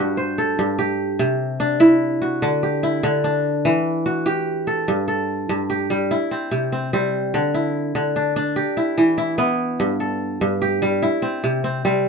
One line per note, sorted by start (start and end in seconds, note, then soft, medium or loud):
0.00 0.58 G2 medium
0.00 0.93 D4 medium
0.00 0.93 E4 medium
0.00 0.65 F#4 medium
0.00 0.78 G4 medium
0.00 0.16 A4 medium
0.00 0.17 B4 medium
0.00 0.17 C5 medium
0.00 0.26 D5 medium
0.17 1.36 C5 medium
0.38 1.70 A4 medium
0.59 1.25 G2 medium
0.79 2.20 G4 medium
1.19 2.47 C3 medium
1.60 3.24 D4 medium
1.80 2.83 E4 medium
2.22 2.69 F#4 medium
2.42 3.02 D3 medium
2.63 4.04 G4 medium
2.83 4.40 E4 medium
3.03 3.70 D3 medium
3.24 4.92 D4 medium
3.65 4.92 E3 medium
4.06 4.94 F#4 medium
4.26 5.67 G4 medium
4.67 5.07 A4 medium
4.88 5.48 G2 medium
5.08 6.40 A4 medium
5.49 6.15 G2 medium
5.70 7.11 G4 medium
5.90 6.15 G3 medium
6.11 7.54 E4 medium
6.31 6.72 C4 medium
6.51 7.38 C3 medium
6.72 6.93 C4 medium
6.93 7.38 G3 medium
6.93 8.73 C4 medium
7.34 7.94 D3 medium
7.54 8.76 E4 medium
7.95 8.61 D3 medium
8.16 8.36 D4 medium
8.36 10.04 D4 medium
8.56 9.97 G4 medium
8.77 9.17 E4 medium
8.98 9.84 E3 medium
9.18 9.38 E4 medium
9.38 11.28 B3 medium
9.38 10.95 E4 medium
9.80 10.40 G2 medium
10.00 11.32 A4 medium
10.41 11.07 G2 medium
10.62 12.03 G4 medium
10.82 11.07 G3 medium
11.02 12.09 E4 medium
11.22 11.64 C4 medium
11.44 12.09 C3 medium
11.64 11.84 C4 medium
11.85 12.09 G3 medium
11.85 12.09 C4 medium